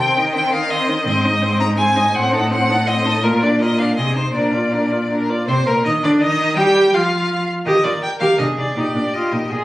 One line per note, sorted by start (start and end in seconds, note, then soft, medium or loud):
0.00 1.08 D#3 medium
0.00 0.18 C4 medium
0.00 0.17 C5 medium
0.00 0.33 G5 medium
0.16 0.37 D#4 medium
0.16 0.35 D#5 medium
0.33 0.55 C4 medium
0.33 0.54 C5 medium
0.33 0.52 G5 medium
0.52 0.70 D#4 medium
0.52 0.70 D#5 medium
0.52 0.72 F5 medium
0.70 0.90 C4 medium
0.70 0.89 C5 medium
0.70 1.06 D#5 loud
0.88 1.06 D#4 medium
0.88 1.05 D#5 medium
1.06 2.14 G#2 medium
1.06 1.26 C4 medium
1.06 1.26 C5 medium
1.06 1.59 D#5 medium
1.24 1.44 D#4 medium
1.24 1.44 D#5 medium
1.42 1.62 C4 medium
1.42 1.62 C5 medium
1.60 1.78 D#4 medium
1.60 1.77 D#5 medium
1.60 1.67 A#5 loud
1.78 1.98 C4 medium
1.78 1.98 C5 medium
1.78 2.16 G#5 medium
1.96 2.14 D#4 medium
1.96 2.14 D#5 medium
2.14 3.25 A2 medium
2.14 2.34 C4 medium
2.14 2.35 C5 medium
2.14 2.51 F#5 medium
2.32 2.52 D#4 medium
2.32 2.53 A4 medium
2.51 2.70 C4 medium
2.51 2.71 C5 medium
2.51 2.88 F#5 medium
2.68 2.86 D#4 medium
2.68 2.87 A4 medium
2.87 3.07 C4 medium
2.87 3.07 C5 medium
2.87 3.25 D#5 medium
3.05 3.23 D#4 medium
3.05 3.23 A4 medium
3.24 3.99 A#2 medium
3.24 3.44 F4 medium
3.24 3.43 A#4 medium
3.24 3.44 A#4 medium
3.41 3.62 D4 soft
3.41 3.60 D5 medium
3.41 3.63 D5 soft
3.61 3.80 F4 medium
3.61 3.81 A#4 medium
3.61 3.80 D#5 medium
3.78 3.96 D4 soft
3.78 3.97 D5 soft
3.78 3.96 F5 medium
3.97 4.34 C3 medium
3.97 4.17 C4 soft
3.97 4.18 G#4 soft
3.97 4.15 D#5 medium
4.15 4.35 D#4 soft
4.15 4.34 C5 medium
4.15 4.34 C5 soft
4.34 5.28 A#2 soft
4.34 4.55 D4 soft
4.34 4.56 A#4 soft
4.34 5.09 D5 soft
4.53 4.74 F4 soft
4.53 4.73 D5 soft
4.72 4.93 D4 soft
4.72 4.94 A#4 soft
4.92 5.10 F4 soft
4.92 5.10 D5 soft
5.11 5.30 D4 soft
5.11 5.31 A#4 soft
5.29 5.48 F4 soft
5.29 5.48 D5 soft
5.48 5.65 C3 medium
5.48 5.56 C4 medium
5.48 5.55 C5 medium
5.48 5.68 C5 medium
5.66 5.86 A#2 medium
5.66 5.85 A#3 medium
5.66 5.84 A#4 medium
5.66 5.86 A#4 medium
5.85 6.03 D#3 medium
5.85 5.92 D#4 medium
5.85 6.05 D#5 medium
5.85 5.92 D#5 medium
6.03 6.11 D3 medium
6.03 6.23 D4 medium
6.03 6.24 D5 medium
6.03 6.11 D5 medium
6.21 6.57 D#3 medium
6.21 6.59 D#4 medium
6.21 6.57 D#5 medium
6.21 6.59 D#5 medium
6.57 6.93 G3 medium
6.57 6.95 G4 medium
6.57 6.95 G5 medium
6.57 6.96 G5 loud
6.94 7.47 F3 medium
6.94 7.48 F4 medium
6.94 7.48 F5 medium
7.66 7.73 D#3 medium
7.66 7.83 G4 medium
7.66 8.40 A#4 medium
7.66 7.86 D#5 medium
7.84 7.91 D#3 medium
7.84 7.91 F4 soft
7.84 8.02 D5 medium
8.03 8.10 G5 loud
8.20 8.28 D#3 medium
8.20 8.38 G4 medium
8.20 8.38 F5 medium
8.38 8.46 C3 soft
8.38 8.47 D4 soft
8.38 8.77 G#4 medium
8.38 8.46 D#5 medium
8.57 8.64 C3 soft
8.57 8.65 D#4 medium
8.57 8.76 D5 medium
8.75 8.83 A#2 medium
8.75 8.94 D#4 medium
8.75 9.52 G4 soft
8.75 9.15 D5 medium
8.94 9.02 A#2 soft
8.94 9.03 D4 soft
9.14 9.35 F4 medium
9.14 9.51 D#5 medium
9.32 9.40 A#2 medium
9.32 9.51 D#4 soft
9.51 9.59 A#2 soft
9.51 9.64 F4 soft
9.51 9.64 G#4 medium